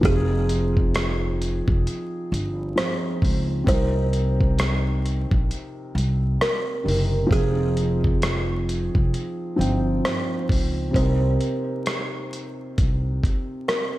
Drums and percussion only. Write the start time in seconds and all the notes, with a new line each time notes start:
0.03 kick, closed hi-hat
0.49 closed hi-hat
0.77 kick
0.94 cross-stick, closed hi-hat
1.42 closed hi-hat
1.68 kick
1.87 closed hi-hat
2.34 closed hi-hat
2.78 cross-stick, closed hi-hat
3.22 kick, open hi-hat
3.67 kick, closed hi-hat
4.13 closed hi-hat
4.41 kick
4.59 cross-stick, closed hi-hat
5.06 closed hi-hat
5.31 kick
5.51 closed hi-hat
5.98 closed hi-hat
6.41 cross-stick, closed hi-hat
6.88 open hi-hat
7.31 kick, closed hi-hat
7.77 closed hi-hat
8.04 kick
8.22 cross-stick, closed hi-hat
8.69 closed hi-hat
8.95 kick
9.14 closed hi-hat
9.61 closed hi-hat
10.05 cross-stick, closed hi-hat
10.49 kick, open hi-hat
10.94 kick, closed hi-hat
11.41 closed hi-hat
11.86 cross-stick, closed hi-hat
12.33 closed hi-hat
12.78 kick, closed hi-hat
13.24 kick, closed hi-hat
13.69 cross-stick, closed hi-hat